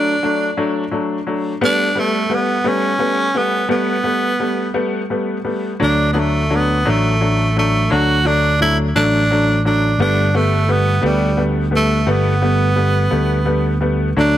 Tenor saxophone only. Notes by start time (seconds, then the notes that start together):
Already playing: D4
1.64 D4
2.00 A3
2.34 B3
2.68 C#4
3.38 B3
3.71 B3
5.83 D4
6.13 B3
6.19 A3
6.55 B3
6.90 A3
7.59 A3
7.91 F#4
8.27 D4
8.62 E4
8.96 D4
9.67 D4
10.02 D4
10.36 A3
10.71 B3
11.06 G3
11.76 A3
12.11 B3
14.20 D4